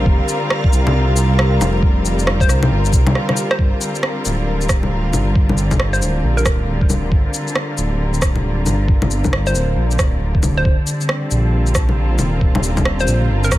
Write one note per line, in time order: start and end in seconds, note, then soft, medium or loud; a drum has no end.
0.00 10.65 G3 medium
0.00 10.66 C4 medium
0.00 10.65 F4 medium
0.00 10.66 A#4 medium
0.00 3.60 F5 medium
0.06 0.19 F1 loud
0.06 13.58 D3 medium
0.06 kick loud
0.28 shaker medium
0.50 cross-stick loud
0.64 kick loud
0.72 1.60 C2 medium
0.72 shaker medium
0.87 low bongo medium
1.17 shaker medium
1.39 cross-stick loud
1.60 2.48 F1 medium
1.60 low bongo medium
1.60 shaker medium
1.83 kick loud
2.05 shaker medium
2.19 shaker soft
2.27 cross-stick loud
2.40 2.64 C5 medium
2.40 kick loud
2.40 shaker soft
2.49 2.70 C2 medium
2.49 cross-stick medium
2.49 shaker medium
2.63 low bongo medium
2.71 2.94 G1 medium
2.85 shaker soft
2.93 3.15 C2 medium
2.93 kick loud
2.93 shaker medium
3.07 low bongo medium
3.15 cross-stick medium
3.29 cross-stick medium
3.29 low bongo soft
3.37 shaker medium
3.51 3.59 C5 medium
3.51 cross-stick medium
3.59 3.72 G1 medium
3.59 kick loud
3.81 shaker medium
3.95 shaker soft
4.03 cross-stick loud
4.25 5.13 D1 medium
4.25 shaker medium
4.61 shaker soft
4.69 kick loud
4.69 cross-stick loud
4.69 shaker medium
4.83 low bongo soft
5.13 6.01 G1 medium
5.13 low bongo medium
5.13 shaker medium
5.36 kick loud
5.49 low bongo medium
5.58 shaker medium
5.71 kick medium
5.71 low bongo medium
5.71 shaker soft
5.80 cross-stick loud
5.93 6.16 C5 medium
5.93 shaker soft
6.02 6.23 D1 medium
6.02 shaker medium
6.24 6.47 A#1 medium
6.37 6.68 A#4 medium
6.37 shaker soft
6.46 7.11 D1 medium
6.46 kick loud
6.46 cross-stick loud
6.46 shaker medium
6.81 kick loud
6.90 low bongo medium
6.90 shaker medium
7.12 7.25 G1 loud
7.12 kick loud
7.34 shaker medium
7.48 shaker soft
7.55 cross-stick loud
7.78 8.65 D1 medium
7.78 shaker medium
8.14 shaker soft
8.22 kick loud
8.22 cross-stick loud
8.22 shaker medium
8.36 low bongo soft
8.66 9.54 G1 medium
8.66 low bongo medium
8.66 shaker medium
8.88 kick loud
9.02 low bongo medium
9.11 shaker medium
9.24 kick medium
9.24 low bongo medium
9.24 shaker soft
9.33 cross-stick loud
9.46 9.70 C5 medium
9.46 shaker soft
9.55 9.76 D1 medium
9.55 shaker medium
9.77 10.00 A#1 medium
9.91 shaker soft
9.99 10.64 D1 medium
9.99 kick loud
9.99 cross-stick loud
9.99 shaker medium
10.35 kick loud
10.43 low bongo soft
10.43 shaker medium
10.57 10.71 C5 medium
10.65 10.78 D#1 medium
10.65 13.58 A5 medium
10.65 kick loud
10.87 13.58 G3 medium
10.87 shaker medium
11.01 13.58 C4 medium
11.01 shaker soft
11.09 cross-stick loud
11.29 12.19 A#1 medium
11.29 13.58 F4 medium
11.29 shaker medium
11.54 13.58 A#4 medium
11.67 shaker soft
11.75 kick loud
11.75 cross-stick loud
11.75 shaker medium
11.89 low bongo soft
12.19 13.07 D#1 medium
12.19 low bongo soft
12.19 shaker medium
12.41 kick loud
12.55 low bongo medium
12.63 shaker medium
12.77 kick medium
12.77 low bongo medium
12.77 shaker soft
12.85 cross-stick loud
13.00 13.23 C5 medium
13.00 shaker soft
13.08 13.29 A#1 medium
13.08 shaker medium
13.30 13.53 G1 medium
13.44 13.58 A#4 medium
13.44 shaker soft
13.52 13.58 A#1 medium
13.52 kick loud
13.52 cross-stick loud
13.52 shaker medium